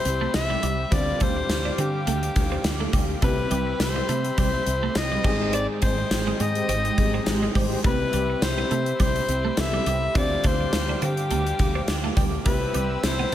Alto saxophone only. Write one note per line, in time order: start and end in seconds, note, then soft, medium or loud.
0.00 0.31 C5 loud
0.35 0.94 E5 loud
0.93 1.24 D5 loud
1.22 1.79 C5 loud
1.80 2.91 G4 medium
3.24 3.77 B4 loud
3.82 4.35 C5 loud
4.39 4.99 C5 loud
4.97 5.54 D#5 loud
5.54 5.67 D5 loud
5.83 6.43 C5 loud
6.41 7.56 D#5 loud
7.85 8.45 B4 loud
8.43 9.00 C5 loud
9.02 9.62 C5 loud
9.60 10.19 E5 loud
10.17 10.48 D5 loud
10.47 11.05 C5 loud
11.04 12.18 G4 medium
12.47 13.06 B4 loud
13.04 13.35 C5 medium